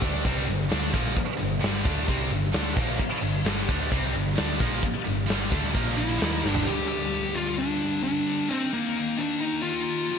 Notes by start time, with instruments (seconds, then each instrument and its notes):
0.02 picked electric bass D2, distorted electric guitar D3 A3 D4, kick, open hi-hat
0.25 picked electric bass C2, distorted electric guitar C3 G3 C4, kick, open hi-hat
0.46 picked electric bass G1, distorted electric guitar G2 D3, open hi-hat
0.61 snare
0.71 picked electric bass D2, distorted electric guitar D3 A3 D4, snare, open hi-hat
0.93 picked electric bass A#1, distorted electric guitar A#2 F3 A#3, kick, open hi-hat
1.17 kick, open hi-hat
1.39 picked electric bass G1, distorted electric guitar G2 D3, open hi-hat
1.61 picked electric bass G1, distorted electric guitar G2 D3 G3, snare, open hi-hat
1.85 picked electric bass D2, distorted electric guitar D3 A3 D4, kick, snare, open hi-hat
2.08 picked electric bass C2, distorted electric guitar C3 G3 C4, kick, open hi-hat
2.31 picked electric bass G1, distorted electric guitar G2 D3, open hi-hat
2.44 snare
2.53 picked electric bass D2, distorted electric guitar D3 A3 D4, snare, open hi-hat
2.77 picked electric bass A#1, distorted electric guitar A#2 F3 A#3, kick, open hi-hat
2.99 kick, crash
3.22 picked electric bass G1, distorted electric guitar G2 D3, open hi-hat
3.44 picked electric bass G1, distorted electric guitar G2 D3 G3, snare, open hi-hat
3.69 picked electric bass D2, distorted electric guitar D3 A3 D4, kick, open hi-hat
3.91 picked electric bass C2, distorted electric guitar C3 G3 C4, kick, open hi-hat
4.13 picked electric bass G1, distorted electric guitar G2 D3, open hi-hat
4.28 snare
4.36 picked electric bass D2, distorted electric guitar D3 A3 D4, snare, open hi-hat
4.60 picked electric bass A#1, distorted electric guitar A#2 F3 A#3, kick, open hi-hat
4.83 kick, open hi-hat
5.05 picked electric bass G1, distorted electric guitar G2 D3, open hi-hat
5.28 picked electric bass G1, distorted electric guitar G2 D3 G3, snare, open hi-hat
5.52 picked electric bass D2, distorted electric guitar D3 A3 D4, kick, open hi-hat
5.74 picked electric bass A#1, distorted electric guitar A#2 F3 A#3, kick, open hi-hat
5.97 lead electric guitar E4, open hi-hat
6.21 picked electric bass D#2, distorted electric guitar D#3 A#3 D#4, snare, open hi-hat
6.44 picked electric bass G1, distorted electric guitar G2 D3 G3, snare
6.50 lead electric guitar D4
6.55 floor tom
6.67 distorted electric guitar G2 D3 G3, lead electric guitar G4
6.88 lead electric guitar G4
7.34 lead electric guitar F4
7.59 lead electric guitar D4
8.03 lead electric guitar D4
8.49 distorted electric guitar D#3 A#3 D#4, lead electric guitar C4
8.73 lead electric guitar A#3
9.18 lead electric guitar D4
9.41 lead electric guitar D#4
9.62 lead electric guitar F4
10.09 distorted electric guitar F2 C3 F3